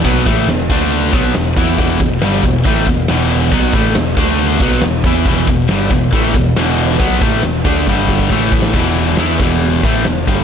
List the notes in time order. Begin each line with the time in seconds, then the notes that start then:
0.04 B1 B2 F#3 B3, kick, ride
0.26 A1 A2 E3 A3, kick, ride
0.47 E1 E2 B2, snare, ride
0.70 D2 D3 A3 D4, kick, ride
0.92 ride
1.13 B1 B2 F#3 B3, kick, ride
1.35 E1 E2 B2, snare, ride
1.56 E2 E3 B3 E4, kick, ride
1.78 E1 E2 B2 E3, kick, ride
2.00 E1 E2 B2, kick, ride
2.22 G1 G2 D3 G3, snare, ride
2.43 E1 E2 B2, kick, ride
2.65 A1 A2 E3 A3, kick, ride
2.86 E1 E2 B2, kick, ride
3.08 E1 E2 B2 E3, snare, ride
3.31 ride
3.51 B1 B2 F#3 B3, kick, ride
3.63 snare
3.73 A1 A2 E3 A3, kick, ride
3.95 E1 E2 B2, snare, ride
4.17 D2 D3 A3 D4, kick, ride
4.38 ride
4.60 B1 B2 F#3 B3, kick, ride
4.81 E1 E2 B2, snare, ride
5.04 E2 E3 B3 E4, kick, ride
5.25 E1 E2 B2 E3, kick, ride
5.47 E1 E2 B2, kick, ride
5.69 G1 G2 D3 G3, snare, ride
5.90 E1 E2 B2, kick, ride
6.13 A1 A2 E3 A3, kick, ride
6.34 E1 E2 B2, kick, ride
6.55 E1 E2 B2 E3, snare, ride
6.78 ride
6.89 snare
7.00 B1 B2 F#3 B3, kick, ride
7.21 A1 A2 E3 A3, kick, ride
7.42 E1 E2 B2, snare, ride
7.64 D2 D3 A3 D4, kick, ride
7.86 G1 G2 D3 G3, kick
8.09 kick
8.19 kick
8.30 A1 A2 E3 A3, kick
8.52 kick
8.62 snare
8.73 E1 E2 B2 E3, kick, crash
8.95 closed hi-hat
9.17 E2 E3 B3 E4, snare, closed hi-hat
9.39 E1 E2 B2 E3, kick, closed hi-hat
9.61 closed hi-hat
9.83 A1 A2 E3 A3, kick, closed hi-hat
9.94 snare
10.05 E1 E2 B2, snare, closed hi-hat
10.27 G1 G2 D3 G3, kick, closed hi-hat